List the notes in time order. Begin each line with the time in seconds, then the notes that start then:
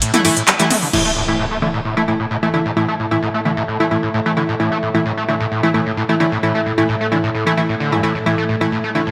0.02 A2, closed hi-hat, ride
0.14 E3 A3 E4, closed hi-hat, mid tom
0.25 G2 E3 A3 E4, open hi-hat, ride
0.37 A2, closed hi-hat
0.48 G3, clap, closed hi-hat, ride
0.59 E3 G3 A3 E4, closed hi-hat
0.70 A3, mid tom, open hi-hat, ride
0.82 D3, open hi-hat
0.93 A2 E3 A3 E4, crash, impact
1.05 A3
1.16 A2
1.28 A2 E3 A3 E4
1.39 A2
1.51 A3
1.62 D3 E3 A3 E4
1.74 A2
1.85 A2
1.97 E3 A3 E4
2.08 A2 E3 A3 E4
2.20 A2
2.31 A2
2.43 E3 A3 E4
2.54 D3 E3 A3 E4
2.66 A2
2.77 A2 E3 A3 E4
2.89 A3
3.00 A2
3.11 A2 E3 A3 E4
3.23 A2
3.34 A3
3.45 D3 E3 A3 E4
3.57 A2
3.68 A2
3.80 E3 A3 E4
3.91 A2 E3 A3 E4
4.03 A2
4.14 A2
4.26 E3 A3 E4
4.37 D3 E3 A3 E4
4.49 A2
4.60 A2 E3 A3 E4
4.72 A3
4.83 A2
4.95 A2 E3 A3 E4
5.06 A2
5.17 A3
5.28 D3 E3 A3 E4
5.40 A2
5.52 A2
5.63 E3 A3 E4
5.74 A2 E3 A3 E4
5.86 A2
5.97 A2
6.09 E3 A3 E4
6.20 D3 E3 A3 E4
6.32 A2
6.43 A2 E3 A3 E4
6.55 A3
6.66 A2
6.78 A2 E3 A3 E4
6.89 A2
7.01 A3
7.12 D3 E3 A3 E4
7.24 A2
7.35 A2
7.46 E3 A3 E4
7.57 E3 A3 E4
7.69 A2
7.80 D3
7.92 G2 E3 A3 E4
8.03 A2 E3 A3 E4
8.15 A2
8.26 A2 E3 A3 E4
8.38 A3
8.49 A2
8.61 A2 E3 A3 E4
8.72 A2
8.84 A3
8.95 D3 E3 A3 E4
9.07 A2